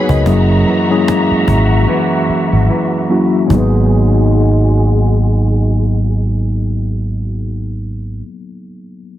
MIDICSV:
0, 0, Header, 1, 8, 480
1, 0, Start_track
1, 0, Key_signature, 5, "minor"
1, 0, Tempo, 810811
1, 152, Time_signature, 4, 2, 24, 8
1, 5438, End_track
2, 0, Start_track
2, 0, Title_t, "String section"
2, 0, Program_c, 0, 48
2, 0, Note_on_c, 0, 68, 79
2, 0, Note_on_c, 0, 78, 72
2, 0, Note_on_c, 0, 83, 85
2, 135, Note_off_c, 0, 68, 0
2, 135, Note_off_c, 0, 83, 0
2, 136, Note_off_c, 0, 78, 0
2, 152, Note_on_c, 0, 66, 74
2, 152, Note_on_c, 0, 76, 68
2, 152, Note_on_c, 0, 82, 85
2, 2053, Note_off_c, 0, 66, 0
2, 2053, Note_off_c, 0, 76, 0
2, 2053, Note_off_c, 0, 82, 0
2, 2075, Note_on_c, 0, 56, 75
2, 2076, Note_on_c, 0, 66, 68
2, 2077, Note_on_c, 0, 68, 78
2, 4444, Note_off_c, 0, 56, 0
2, 4444, Note_off_c, 0, 66, 0
2, 4444, Note_off_c, 0, 68, 0
2, 5438, End_track
3, 0, Start_track
3, 0, Title_t, "Tine electric piano"
3, 0, Program_c, 1, 4
3, 0, Control_c, 1, 64, 127
3, 0, Note_on_c, 1, 63, 49
3, 0, Note_on_c, 1, 66, 59
3, 0, Note_on_c, 1, 68, 58
3, 0, Note_on_c, 1, 71, 68
3, 0, Note_on_c, 1, 73, 72
3, 57, Note_on_c, 1, 75, 61
3, 61, Note_on_c, 1, 70, 49
3, 151, Note_on_c, 1, 54, 75
3, 153, Note_on_c, 1, 58, 71
3, 156, Note_on_c, 1, 61, 71
3, 160, Note_off_c, 1, 66, 0
3, 160, Control_c, 1, 64, 0
3, 160, Note_on_c, 1, 64, 74
3, 162, Note_off_c, 1, 68, 0
3, 163, Note_on_c, 1, 68, 89
3, 165, Note_off_c, 1, 63, 0
3, 165, Note_off_c, 1, 71, 0
3, 165, Note_off_c, 1, 73, 0
3, 270, Control_c, 1, 64, 127
3, 282, Note_off_c, 1, 75, 0
3, 284, Note_off_c, 1, 70, 0
3, 447, Note_off_c, 1, 54, 0
3, 448, Note_off_c, 1, 58, 0
3, 450, Note_off_c, 1, 61, 0
3, 451, Note_off_c, 1, 64, 0
3, 453, Note_off_c, 1, 68, 0
3, 531, Note_on_c, 1, 54, 85
3, 534, Note_on_c, 1, 56, 61
3, 538, Note_on_c, 1, 61, 79
3, 540, Note_on_c, 1, 64, 74
3, 543, Note_on_c, 1, 68, 94
3, 565, Note_off_c, 1, 56, 0
3, 573, Note_on_c, 1, 58, 78
3, 1291, Note_off_c, 1, 54, 0
3, 1294, Note_off_c, 1, 61, 0
3, 1295, Note_off_c, 1, 64, 0
3, 1297, Note_off_c, 1, 68, 0
3, 1312, Note_off_c, 1, 58, 0
3, 1832, Note_on_c, 1, 54, 81
3, 1835, Note_on_c, 1, 58, 70
3, 1837, Note_on_c, 1, 61, 70
3, 1841, Note_on_c, 1, 64, 75
3, 1842, Note_on_c, 1, 66, 84
3, 2032, Note_off_c, 1, 54, 0
3, 2033, Note_off_c, 1, 58, 0
3, 2034, Note_off_c, 1, 61, 0
3, 2036, Note_off_c, 1, 64, 0
3, 2037, Note_off_c, 1, 66, 0
3, 2053, Note_on_c, 1, 54, 73
3, 2064, Note_on_c, 1, 58, 63
3, 2076, Note_on_c, 1, 59, 64
3, 2080, Control_c, 1, 64, 0
3, 2088, Note_on_c, 1, 63, 67
3, 2099, Note_on_c, 1, 68, 82
3, 2175, Control_c, 1, 64, 127
3, 4847, Note_off_c, 1, 54, 0
3, 4853, Note_off_c, 1, 58, 0
3, 4858, Note_off_c, 1, 59, 0
3, 4864, Note_off_c, 1, 63, 0
3, 4870, Note_off_c, 1, 68, 0
3, 5438, End_track
4, 0, Start_track
4, 0, Title_t, "Nylon-string guitar"
4, 0, Program_c, 2, 24
4, 0, Note_on_c, 2, 44, 85
4, 0, Note_on_c, 2, 54, 57
4, 0, Note_on_c, 2, 59, 57
4, 151, Note_off_c, 2, 44, 0
4, 153, Note_on_c, 2, 42, 76
4, 208, Note_off_c, 2, 59, 0
4, 392, Note_off_c, 2, 54, 0
4, 394, Note_on_c, 2, 52, 57
4, 635, Note_on_c, 2, 58, 62
4, 1105, Note_off_c, 2, 52, 0
4, 1112, Note_on_c, 2, 52, 70
4, 1586, Note_off_c, 2, 52, 0
4, 1594, Note_on_c, 2, 52, 55
4, 2046, Note_off_c, 2, 42, 0
4, 2049, Note_on_c, 2, 44, 77
4, 2075, Note_off_c, 2, 52, 0
4, 2078, Note_on_c, 2, 54, 74
4, 2099, Note_off_c, 2, 58, 0
4, 2101, Note_on_c, 2, 59, 76
4, 2123, Note_on_c, 2, 63, 89
4, 4869, Note_off_c, 2, 44, 0
4, 4883, Note_off_c, 2, 54, 0
4, 4895, Note_off_c, 2, 59, 0
4, 4906, Note_off_c, 2, 63, 0
4, 5438, End_track
5, 0, Start_track
5, 0, Title_t, "Fingered electric bass"
5, 0, Program_c, 3, 33
5, 56, Note_on_c, 3, 37, 87
5, 145, Note_off_c, 3, 37, 0
5, 156, Note_on_c, 3, 30, 107
5, 371, Note_off_c, 3, 30, 0
5, 876, Note_on_c, 3, 32, 85
5, 1091, Note_off_c, 3, 32, 0
5, 1495, Note_on_c, 3, 32, 79
5, 1585, Note_off_c, 3, 32, 0
5, 2074, Note_on_c, 3, 32, 83
5, 4858, Note_off_c, 3, 32, 0
5, 5438, End_track
6, 0, Start_track
6, 0, Title_t, "Downlifter"
6, 0, Program_c, 4, 103
6, 0, Note_on_c, 4, 60, 81
6, 2073, Note_off_c, 4, 60, 0
6, 5438, End_track
7, 0, Start_track
7, 0, Title_t, "Cajon"
7, 55, Note_on_c, 9, 36, 89
7, 114, Note_off_c, 9, 36, 0
7, 154, Note_on_c, 9, 36, 107
7, 213, Note_off_c, 9, 36, 0
7, 641, Note_on_c, 9, 38, 98
7, 700, Note_off_c, 9, 38, 0
7, 875, Note_on_c, 9, 36, 94
7, 934, Note_off_c, 9, 36, 0
7, 2073, Note_on_c, 9, 36, 93
7, 2132, Note_off_c, 9, 36, 0
7, 5438, End_track
8, 0, Start_track
8, 0, Title_t, "Muted fingered electric bass strokes"
8, 776, Note_on_c, 9, 29, 43
8, 835, Note_off_c, 9, 29, 0
8, 1356, Note_on_c, 9, 29, 45
8, 1415, Note_off_c, 9, 29, 0
8, 5438, End_track
0, 0, End_of_file